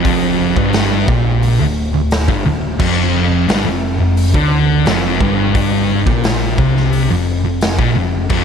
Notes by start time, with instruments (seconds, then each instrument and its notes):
Already playing: picked electric bass F1, distorted electric guitar F2
0.05 kick, open hi-hat
0.56 picked electric bass G1, distorted electric guitar G2, kick
0.73 snare, open hi-hat
1.08 picked electric bass A#1, distorted electric guitar A#2, kick
1.43 open hi-hat
1.60 picked electric bass D1, distorted electric guitar D2
1.94 picked electric bass D1, distorted electric guitar D2
2.11 snare, open hi-hat
2.28 picked electric bass G1, distorted electric guitar G2, kick
2.45 picked electric bass D1, distorted electric guitar D2
2.79 picked electric bass F1, distorted electric guitar F2, kick, crash
3.48 picked electric bass G1, distorted electric guitar G2, snare, open hi-hat
3.65 picked electric bass F1, distorted electric guitar F2
4.00 picked electric bass F1, distorted electric guitar F2
4.17 open hi-hat
4.34 picked electric bass D2, distorted electric guitar D3, kick
4.86 picked electric bass F1, distorted electric guitar F2, snare, open hi-hat
5.20 picked electric bass G1, distorted electric guitar G2, kick
5.55 kick, open hi-hat
6.07 picked electric bass A#1, distorted electric guitar A#2, kick
6.24 snare, open hi-hat
6.58 picked electric bass C2, distorted electric guitar C3, kick
6.77 snare
6.93 open hi-hat
7.10 picked electric bass F1, distorted electric guitar F2
7.44 picked electric bass F1, distorted electric guitar F2
7.61 snare, open hi-hat
7.79 picked electric bass A#1, distorted electric guitar A#2, kick
7.96 picked electric bass F1, distorted electric guitar F2
8.30 picked electric bass F1, distorted electric guitar F2, kick, crash